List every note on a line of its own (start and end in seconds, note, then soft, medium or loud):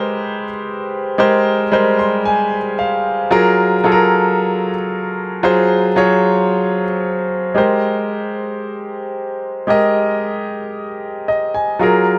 0.00 1.18 G#3 medium
0.00 1.19 G4 medium
0.00 1.19 A#4 medium
0.00 3.33 B4 medium
0.00 1.20 C5 loud
1.18 1.62 G#3 medium
1.18 1.62 G4 medium
1.18 1.63 A#4 medium
1.18 1.63 C5 loud
1.72 2.57 G3 medium
1.72 2.57 G#3 medium
1.72 2.58 A#4 medium
1.72 2.58 C5 loud
1.99 2.23 C6 medium
2.25 2.75 G#5 medium
2.79 3.28 F5 medium
3.31 3.74 F#3 medium
3.31 3.75 F4 medium
3.31 3.75 G#4 medium
3.31 3.75 A#4 loud
3.84 4.70 F#3 medium
3.84 4.70 F4 medium
3.84 4.70 G#4 medium
3.84 3.92 A4 medium
3.92 4.74 A#4 loud
5.43 5.87 F#3 medium
5.43 5.87 F4 medium
5.43 5.88 G#4 medium
5.43 5.88 C5 loud
5.96 6.82 F#3 medium
5.96 6.82 F4 medium
5.96 6.82 G#4 medium
5.96 6.83 C#5 loud
7.54 9.64 G#3 medium
7.54 9.64 G4 medium
7.54 9.65 A#4 medium
7.54 9.65 C5 medium
9.67 11.76 G#3 medium
9.67 11.77 G4 medium
9.67 11.77 A#4 medium
9.67 11.27 D#5 medium
11.28 11.53 D#5 medium
11.54 11.79 G#5 medium
11.79 12.19 F#3 medium
11.79 12.19 F4 medium
11.79 12.19 G#4 medium
11.79 12.19 A#4 medium